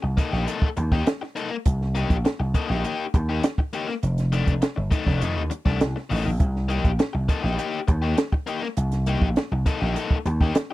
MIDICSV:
0, 0, Header, 1, 5, 480
1, 0, Start_track
1, 0, Tempo, 592885
1, 1343, Time_signature, 4, 2, 24, 8
1, 8693, End_track
2, 0, Start_track
2, 0, Title_t, "Overdriven electric guitar"
2, 0, Program_c, 0, 29
2, 138, Note_on_c, 0, 58, 62
2, 145, Note_on_c, 0, 63, 63
2, 151, Note_on_c, 0, 69, 60
2, 254, Note_off_c, 0, 69, 0
2, 258, Note_off_c, 0, 63, 0
2, 258, Note_on_c, 0, 67, 68
2, 266, Note_off_c, 0, 58, 0
2, 268, Note_on_c, 0, 63, 61
2, 276, Note_on_c, 0, 58, 50
2, 367, Note_off_c, 0, 58, 0
2, 376, Note_off_c, 0, 63, 0
2, 377, Note_on_c, 0, 58, 99
2, 385, Note_off_c, 0, 67, 0
2, 386, Note_on_c, 0, 63, 103
2, 395, Note_on_c, 0, 69, 103
2, 539, Note_off_c, 0, 58, 0
2, 544, Note_off_c, 0, 63, 0
2, 549, Note_off_c, 0, 69, 0
2, 744, Note_on_c, 0, 67, 60
2, 750, Note_on_c, 0, 63, 54
2, 758, Note_on_c, 0, 58, 56
2, 853, Note_off_c, 0, 58, 0
2, 859, Note_off_c, 0, 63, 0
2, 863, Note_off_c, 0, 67, 0
2, 1098, Note_on_c, 0, 58, 74
2, 1104, Note_on_c, 0, 63, 83
2, 1110, Note_on_c, 0, 69, 77
2, 1217, Note_off_c, 0, 69, 0
2, 1221, Note_off_c, 0, 63, 0
2, 1260, Note_off_c, 0, 58, 0
2, 1577, Note_on_c, 0, 58, 77
2, 1584, Note_on_c, 0, 63, 85
2, 1593, Note_on_c, 0, 67, 100
2, 1739, Note_off_c, 0, 58, 0
2, 1743, Note_off_c, 0, 63, 0
2, 1747, Note_off_c, 0, 67, 0
2, 2060, Note_on_c, 0, 58, 65
2, 2066, Note_on_c, 0, 63, 64
2, 2073, Note_on_c, 0, 69, 62
2, 2176, Note_off_c, 0, 69, 0
2, 2179, Note_off_c, 0, 63, 0
2, 2179, Note_on_c, 0, 67, 67
2, 2184, Note_off_c, 0, 58, 0
2, 2189, Note_on_c, 0, 63, 62
2, 2193, Note_on_c, 0, 58, 55
2, 2293, Note_off_c, 0, 58, 0
2, 2298, Note_off_c, 0, 63, 0
2, 2303, Note_on_c, 0, 58, 90
2, 2305, Note_off_c, 0, 67, 0
2, 2308, Note_on_c, 0, 63, 80
2, 2316, Note_on_c, 0, 67, 100
2, 2462, Note_off_c, 0, 58, 0
2, 2464, Note_off_c, 0, 63, 0
2, 2468, Note_off_c, 0, 67, 0
2, 2663, Note_on_c, 0, 67, 60
2, 2670, Note_on_c, 0, 63, 55
2, 2679, Note_on_c, 0, 58, 46
2, 2777, Note_off_c, 0, 58, 0
2, 2782, Note_off_c, 0, 63, 0
2, 2787, Note_off_c, 0, 67, 0
2, 3021, Note_on_c, 0, 58, 82
2, 3029, Note_on_c, 0, 63, 88
2, 3033, Note_on_c, 0, 67, 97
2, 3135, Note_off_c, 0, 67, 0
2, 3145, Note_off_c, 0, 63, 0
2, 3181, Note_off_c, 0, 58, 0
2, 3499, Note_on_c, 0, 51, 76
2, 3508, Note_on_c, 0, 57, 95
2, 3512, Note_on_c, 0, 62, 89
2, 3660, Note_off_c, 0, 51, 0
2, 3664, Note_off_c, 0, 57, 0
2, 3666, Note_off_c, 0, 62, 0
2, 3972, Note_on_c, 0, 51, 67
2, 3981, Note_on_c, 0, 57, 67
2, 3986, Note_on_c, 0, 63, 70
2, 4091, Note_off_c, 0, 57, 0
2, 4092, Note_off_c, 0, 63, 0
2, 4095, Note_on_c, 0, 62, 57
2, 4097, Note_off_c, 0, 51, 0
2, 4101, Note_on_c, 0, 57, 59
2, 4107, Note_on_c, 0, 51, 50
2, 4208, Note_off_c, 0, 51, 0
2, 4217, Note_off_c, 0, 57, 0
2, 4217, Note_on_c, 0, 51, 76
2, 4223, Note_off_c, 0, 62, 0
2, 4227, Note_on_c, 0, 57, 81
2, 4232, Note_on_c, 0, 63, 94
2, 4379, Note_off_c, 0, 51, 0
2, 4384, Note_off_c, 0, 57, 0
2, 4386, Note_off_c, 0, 63, 0
2, 4578, Note_on_c, 0, 62, 63
2, 4583, Note_on_c, 0, 57, 68
2, 4592, Note_on_c, 0, 51, 47
2, 4691, Note_off_c, 0, 51, 0
2, 4698, Note_off_c, 0, 57, 0
2, 4702, Note_off_c, 0, 62, 0
2, 4936, Note_on_c, 0, 51, 70
2, 4947, Note_on_c, 0, 57, 77
2, 4950, Note_on_c, 0, 63, 91
2, 5055, Note_off_c, 0, 63, 0
2, 5060, Note_off_c, 0, 57, 0
2, 5098, Note_off_c, 0, 51, 0
2, 5412, Note_on_c, 0, 58, 89
2, 5421, Note_on_c, 0, 63, 92
2, 5428, Note_on_c, 0, 67, 105
2, 5576, Note_off_c, 0, 58, 0
2, 5581, Note_off_c, 0, 63, 0
2, 5585, Note_off_c, 0, 67, 0
2, 5898, Note_on_c, 0, 58, 59
2, 5906, Note_on_c, 0, 63, 65
2, 5911, Note_on_c, 0, 69, 76
2, 6012, Note_off_c, 0, 63, 0
2, 6012, Note_off_c, 0, 69, 0
2, 6016, Note_on_c, 0, 67, 66
2, 6021, Note_off_c, 0, 58, 0
2, 6022, Note_on_c, 0, 63, 59
2, 6031, Note_on_c, 0, 58, 48
2, 6126, Note_off_c, 0, 58, 0
2, 6135, Note_off_c, 0, 63, 0
2, 6135, Note_on_c, 0, 58, 79
2, 6139, Note_off_c, 0, 67, 0
2, 6145, Note_on_c, 0, 63, 90
2, 6149, Note_on_c, 0, 67, 107
2, 6299, Note_off_c, 0, 58, 0
2, 6303, Note_off_c, 0, 63, 0
2, 6305, Note_off_c, 0, 67, 0
2, 6492, Note_on_c, 0, 67, 57
2, 6499, Note_on_c, 0, 63, 56
2, 6507, Note_on_c, 0, 58, 56
2, 6607, Note_off_c, 0, 58, 0
2, 6612, Note_off_c, 0, 63, 0
2, 6616, Note_off_c, 0, 67, 0
2, 6854, Note_on_c, 0, 58, 76
2, 6865, Note_on_c, 0, 63, 86
2, 6870, Note_on_c, 0, 67, 94
2, 6973, Note_off_c, 0, 67, 0
2, 6985, Note_off_c, 0, 63, 0
2, 7018, Note_off_c, 0, 58, 0
2, 7343, Note_on_c, 0, 58, 86
2, 7352, Note_on_c, 0, 63, 94
2, 7359, Note_on_c, 0, 67, 84
2, 7503, Note_off_c, 0, 58, 0
2, 7508, Note_off_c, 0, 63, 0
2, 7511, Note_off_c, 0, 67, 0
2, 7819, Note_on_c, 0, 58, 66
2, 7827, Note_on_c, 0, 63, 72
2, 7834, Note_on_c, 0, 69, 77
2, 7940, Note_off_c, 0, 69, 0
2, 7943, Note_off_c, 0, 63, 0
2, 7943, Note_on_c, 0, 67, 59
2, 7947, Note_off_c, 0, 58, 0
2, 7953, Note_on_c, 0, 63, 57
2, 7957, Note_on_c, 0, 58, 53
2, 8048, Note_off_c, 0, 58, 0
2, 8056, Note_off_c, 0, 63, 0
2, 8057, Note_on_c, 0, 58, 90
2, 8065, Note_on_c, 0, 63, 103
2, 8069, Note_off_c, 0, 67, 0
2, 8073, Note_on_c, 0, 69, 95
2, 8221, Note_off_c, 0, 58, 0
2, 8225, Note_off_c, 0, 63, 0
2, 8229, Note_off_c, 0, 69, 0
2, 8427, Note_on_c, 0, 67, 54
2, 8435, Note_on_c, 0, 63, 56
2, 8443, Note_on_c, 0, 58, 54
2, 8536, Note_off_c, 0, 58, 0
2, 8542, Note_off_c, 0, 63, 0
2, 8546, Note_off_c, 0, 67, 0
2, 8693, End_track
3, 0, Start_track
3, 0, Title_t, "Slap bass"
3, 0, Program_c, 1, 36
3, 27, Note_on_c, 1, 36, 83
3, 127, Note_off_c, 1, 36, 0
3, 266, Note_on_c, 1, 34, 83
3, 366, Note_off_c, 1, 34, 0
3, 625, Note_on_c, 1, 39, 86
3, 827, Note_off_c, 1, 39, 0
3, 1342, Note_on_c, 1, 36, 108
3, 1647, Note_off_c, 1, 36, 0
3, 1702, Note_on_c, 1, 34, 95
3, 1804, Note_off_c, 1, 34, 0
3, 1940, Note_on_c, 1, 36, 84
3, 2042, Note_off_c, 1, 36, 0
3, 2183, Note_on_c, 1, 34, 96
3, 2284, Note_off_c, 1, 34, 0
3, 2541, Note_on_c, 1, 39, 96
3, 2744, Note_off_c, 1, 39, 0
3, 3263, Note_on_c, 1, 29, 106
3, 3566, Note_off_c, 1, 29, 0
3, 3620, Note_on_c, 1, 29, 90
3, 3722, Note_off_c, 1, 29, 0
3, 3864, Note_on_c, 1, 31, 94
3, 3964, Note_off_c, 1, 31, 0
3, 4103, Note_on_c, 1, 29, 95
3, 4204, Note_off_c, 1, 29, 0
3, 4228, Note_on_c, 1, 41, 108
3, 4350, Note_off_c, 1, 41, 0
3, 4350, Note_on_c, 1, 39, 71
3, 4448, Note_off_c, 1, 39, 0
3, 4582, Note_on_c, 1, 36, 86
3, 4683, Note_off_c, 1, 36, 0
3, 4708, Note_on_c, 1, 36, 86
3, 4807, Note_off_c, 1, 36, 0
3, 4946, Note_on_c, 1, 33, 87
3, 5046, Note_off_c, 1, 33, 0
3, 5066, Note_on_c, 1, 34, 79
3, 5166, Note_off_c, 1, 34, 0
3, 5181, Note_on_c, 1, 36, 111
3, 5486, Note_off_c, 1, 36, 0
3, 5541, Note_on_c, 1, 34, 94
3, 5643, Note_off_c, 1, 34, 0
3, 5784, Note_on_c, 1, 36, 84
3, 5885, Note_off_c, 1, 36, 0
3, 6022, Note_on_c, 1, 34, 86
3, 6124, Note_off_c, 1, 34, 0
3, 6381, Note_on_c, 1, 39, 77
3, 6585, Note_off_c, 1, 39, 0
3, 7102, Note_on_c, 1, 36, 119
3, 7408, Note_off_c, 1, 36, 0
3, 7462, Note_on_c, 1, 34, 97
3, 7565, Note_off_c, 1, 34, 0
3, 7704, Note_on_c, 1, 36, 78
3, 7806, Note_off_c, 1, 36, 0
3, 7947, Note_on_c, 1, 34, 80
3, 8048, Note_off_c, 1, 34, 0
3, 8301, Note_on_c, 1, 39, 90
3, 8507, Note_off_c, 1, 39, 0
3, 8693, End_track
4, 0, Start_track
4, 0, Title_t, "Muted overdriven electric guitar strokes"
4, 20, Note_on_c, 9, 29, 45
4, 101, Note_off_c, 9, 29, 0
4, 621, Note_on_c, 9, 29, 44
4, 702, Note_off_c, 9, 29, 0
4, 863, Note_on_c, 9, 29, 38
4, 944, Note_off_c, 9, 29, 0
4, 983, Note_on_c, 9, 29, 41
4, 1064, Note_off_c, 9, 29, 0
4, 1221, Note_on_c, 9, 29, 43
4, 1302, Note_off_c, 9, 29, 0
4, 1820, Note_on_c, 9, 29, 39
4, 1901, Note_off_c, 9, 29, 0
4, 1939, Note_on_c, 9, 29, 44
4, 2020, Note_off_c, 9, 29, 0
4, 2543, Note_on_c, 9, 29, 38
4, 2624, Note_off_c, 9, 29, 0
4, 2787, Note_on_c, 9, 29, 40
4, 2868, Note_off_c, 9, 29, 0
4, 2906, Note_on_c, 9, 29, 44
4, 2987, Note_off_c, 9, 29, 0
4, 3144, Note_on_c, 9, 29, 52
4, 3225, Note_off_c, 9, 29, 0
4, 3739, Note_on_c, 9, 29, 43
4, 3820, Note_off_c, 9, 29, 0
4, 3855, Note_on_c, 9, 29, 44
4, 3936, Note_off_c, 9, 29, 0
4, 4453, Note_on_c, 9, 29, 34
4, 4534, Note_off_c, 9, 29, 0
4, 4701, Note_on_c, 9, 29, 36
4, 4782, Note_off_c, 9, 29, 0
4, 4825, Note_on_c, 9, 29, 48
4, 4906, Note_off_c, 9, 29, 0
4, 5059, Note_on_c, 9, 29, 54
4, 5140, Note_off_c, 9, 29, 0
4, 5660, Note_on_c, 9, 29, 43
4, 5741, Note_off_c, 9, 29, 0
4, 5774, Note_on_c, 9, 29, 43
4, 5855, Note_off_c, 9, 29, 0
4, 6376, Note_on_c, 9, 29, 45
4, 6457, Note_off_c, 9, 29, 0
4, 6616, Note_on_c, 9, 29, 38
4, 6697, Note_off_c, 9, 29, 0
4, 6740, Note_on_c, 9, 29, 38
4, 6821, Note_off_c, 9, 29, 0
4, 6983, Note_on_c, 9, 29, 48
4, 7064, Note_off_c, 9, 29, 0
4, 7586, Note_on_c, 9, 29, 38
4, 7667, Note_off_c, 9, 29, 0
4, 7708, Note_on_c, 9, 29, 49
4, 7789, Note_off_c, 9, 29, 0
4, 8307, Note_on_c, 9, 29, 42
4, 8388, Note_off_c, 9, 29, 0
4, 8545, Note_on_c, 9, 29, 37
4, 8626, Note_off_c, 9, 29, 0
4, 8667, Note_on_c, 9, 29, 50
4, 8693, Note_off_c, 9, 29, 0
4, 8693, End_track
5, 0, Start_track
5, 0, Title_t, "Drums"
5, 142, Note_on_c, 9, 36, 87
5, 145, Note_on_c, 9, 42, 79
5, 223, Note_off_c, 9, 36, 0
5, 226, Note_off_c, 9, 42, 0
5, 268, Note_on_c, 9, 38, 36
5, 349, Note_off_c, 9, 38, 0
5, 387, Note_on_c, 9, 42, 85
5, 467, Note_off_c, 9, 42, 0
5, 501, Note_on_c, 9, 36, 88
5, 582, Note_off_c, 9, 36, 0
5, 622, Note_on_c, 9, 42, 80
5, 703, Note_off_c, 9, 42, 0
5, 743, Note_on_c, 9, 36, 97
5, 752, Note_on_c, 9, 38, 38
5, 824, Note_off_c, 9, 36, 0
5, 833, Note_off_c, 9, 38, 0
5, 863, Note_on_c, 9, 42, 104
5, 869, Note_on_c, 9, 38, 115
5, 944, Note_off_c, 9, 42, 0
5, 950, Note_off_c, 9, 38, 0
5, 992, Note_on_c, 9, 38, 42
5, 1073, Note_off_c, 9, 38, 0
5, 1106, Note_on_c, 9, 42, 77
5, 1187, Note_off_c, 9, 42, 0
5, 1340, Note_on_c, 9, 42, 104
5, 1343, Note_on_c, 9, 36, 95
5, 1421, Note_off_c, 9, 42, 0
5, 1424, Note_off_c, 9, 36, 0
5, 1468, Note_on_c, 9, 38, 34
5, 1549, Note_off_c, 9, 38, 0
5, 1584, Note_on_c, 9, 42, 76
5, 1665, Note_off_c, 9, 42, 0
5, 1702, Note_on_c, 9, 36, 93
5, 1704, Note_on_c, 9, 42, 50
5, 1783, Note_off_c, 9, 36, 0
5, 1785, Note_off_c, 9, 42, 0
5, 1822, Note_on_c, 9, 42, 90
5, 1830, Note_on_c, 9, 38, 127
5, 1903, Note_off_c, 9, 42, 0
5, 1911, Note_off_c, 9, 38, 0
5, 2059, Note_on_c, 9, 36, 85
5, 2060, Note_on_c, 9, 42, 77
5, 2140, Note_off_c, 9, 36, 0
5, 2141, Note_off_c, 9, 42, 0
5, 2188, Note_on_c, 9, 38, 35
5, 2269, Note_off_c, 9, 38, 0
5, 2303, Note_on_c, 9, 42, 81
5, 2384, Note_off_c, 9, 42, 0
5, 2542, Note_on_c, 9, 36, 96
5, 2542, Note_on_c, 9, 42, 78
5, 2623, Note_off_c, 9, 36, 0
5, 2623, Note_off_c, 9, 42, 0
5, 2780, Note_on_c, 9, 42, 110
5, 2786, Note_on_c, 9, 38, 110
5, 2861, Note_off_c, 9, 42, 0
5, 2867, Note_off_c, 9, 38, 0
5, 2899, Note_on_c, 9, 36, 95
5, 2980, Note_off_c, 9, 36, 0
5, 3020, Note_on_c, 9, 42, 75
5, 3101, Note_off_c, 9, 42, 0
5, 3147, Note_on_c, 9, 38, 40
5, 3228, Note_off_c, 9, 38, 0
5, 3261, Note_on_c, 9, 42, 89
5, 3342, Note_off_c, 9, 42, 0
5, 3383, Note_on_c, 9, 42, 52
5, 3389, Note_on_c, 9, 38, 33
5, 3463, Note_off_c, 9, 42, 0
5, 3470, Note_off_c, 9, 38, 0
5, 3501, Note_on_c, 9, 42, 72
5, 3582, Note_off_c, 9, 42, 0
5, 3621, Note_on_c, 9, 36, 86
5, 3622, Note_on_c, 9, 42, 56
5, 3702, Note_off_c, 9, 36, 0
5, 3703, Note_off_c, 9, 42, 0
5, 3739, Note_on_c, 9, 42, 91
5, 3747, Note_on_c, 9, 38, 114
5, 3820, Note_off_c, 9, 42, 0
5, 3828, Note_off_c, 9, 38, 0
5, 3979, Note_on_c, 9, 36, 89
5, 3981, Note_on_c, 9, 42, 84
5, 4060, Note_off_c, 9, 36, 0
5, 4062, Note_off_c, 9, 42, 0
5, 4102, Note_on_c, 9, 36, 90
5, 4106, Note_on_c, 9, 38, 37
5, 4183, Note_off_c, 9, 36, 0
5, 4187, Note_off_c, 9, 38, 0
5, 4222, Note_on_c, 9, 42, 88
5, 4303, Note_off_c, 9, 42, 0
5, 4459, Note_on_c, 9, 42, 84
5, 4540, Note_off_c, 9, 42, 0
5, 4581, Note_on_c, 9, 36, 99
5, 4589, Note_on_c, 9, 38, 38
5, 4662, Note_off_c, 9, 36, 0
5, 4670, Note_off_c, 9, 38, 0
5, 4701, Note_on_c, 9, 42, 102
5, 4707, Note_on_c, 9, 38, 110
5, 4782, Note_off_c, 9, 42, 0
5, 4788, Note_off_c, 9, 38, 0
5, 4829, Note_on_c, 9, 38, 38
5, 4910, Note_off_c, 9, 38, 0
5, 4946, Note_on_c, 9, 46, 85
5, 5027, Note_off_c, 9, 46, 0
5, 5182, Note_on_c, 9, 36, 92
5, 5182, Note_on_c, 9, 42, 100
5, 5263, Note_off_c, 9, 36, 0
5, 5263, Note_off_c, 9, 42, 0
5, 5311, Note_on_c, 9, 38, 34
5, 5392, Note_off_c, 9, 38, 0
5, 5423, Note_on_c, 9, 42, 77
5, 5504, Note_off_c, 9, 42, 0
5, 5542, Note_on_c, 9, 36, 86
5, 5543, Note_on_c, 9, 42, 49
5, 5623, Note_off_c, 9, 36, 0
5, 5624, Note_off_c, 9, 42, 0
5, 5660, Note_on_c, 9, 42, 89
5, 5668, Note_on_c, 9, 38, 127
5, 5741, Note_off_c, 9, 42, 0
5, 5748, Note_off_c, 9, 38, 0
5, 5899, Note_on_c, 9, 36, 87
5, 5902, Note_on_c, 9, 42, 79
5, 5980, Note_off_c, 9, 36, 0
5, 5983, Note_off_c, 9, 42, 0
5, 6029, Note_on_c, 9, 38, 34
5, 6110, Note_off_c, 9, 38, 0
5, 6142, Note_on_c, 9, 42, 83
5, 6223, Note_off_c, 9, 42, 0
5, 6380, Note_on_c, 9, 42, 77
5, 6382, Note_on_c, 9, 36, 89
5, 6461, Note_off_c, 9, 42, 0
5, 6463, Note_off_c, 9, 36, 0
5, 6619, Note_on_c, 9, 42, 103
5, 6625, Note_on_c, 9, 38, 116
5, 6700, Note_off_c, 9, 42, 0
5, 6706, Note_off_c, 9, 38, 0
5, 6740, Note_on_c, 9, 36, 89
5, 6821, Note_off_c, 9, 36, 0
5, 6860, Note_on_c, 9, 42, 83
5, 6941, Note_off_c, 9, 42, 0
5, 6985, Note_on_c, 9, 38, 37
5, 7066, Note_off_c, 9, 38, 0
5, 7099, Note_on_c, 9, 42, 94
5, 7180, Note_off_c, 9, 42, 0
5, 7219, Note_on_c, 9, 42, 46
5, 7225, Note_on_c, 9, 38, 36
5, 7300, Note_off_c, 9, 42, 0
5, 7306, Note_off_c, 9, 38, 0
5, 7337, Note_on_c, 9, 42, 70
5, 7418, Note_off_c, 9, 42, 0
5, 7461, Note_on_c, 9, 36, 90
5, 7542, Note_off_c, 9, 36, 0
5, 7579, Note_on_c, 9, 42, 88
5, 7586, Note_on_c, 9, 38, 121
5, 7660, Note_off_c, 9, 42, 0
5, 7667, Note_off_c, 9, 38, 0
5, 7821, Note_on_c, 9, 36, 86
5, 7821, Note_on_c, 9, 42, 83
5, 7902, Note_off_c, 9, 36, 0
5, 7902, Note_off_c, 9, 42, 0
5, 7949, Note_on_c, 9, 38, 31
5, 8030, Note_off_c, 9, 38, 0
5, 8064, Note_on_c, 9, 42, 93
5, 8145, Note_off_c, 9, 42, 0
5, 8182, Note_on_c, 9, 36, 82
5, 8263, Note_off_c, 9, 36, 0
5, 8303, Note_on_c, 9, 42, 77
5, 8384, Note_off_c, 9, 42, 0
5, 8425, Note_on_c, 9, 36, 96
5, 8433, Note_on_c, 9, 38, 39
5, 8506, Note_off_c, 9, 36, 0
5, 8514, Note_off_c, 9, 38, 0
5, 8541, Note_on_c, 9, 42, 102
5, 8547, Note_on_c, 9, 38, 122
5, 8622, Note_off_c, 9, 42, 0
5, 8628, Note_off_c, 9, 38, 0
5, 8693, End_track
0, 0, End_of_file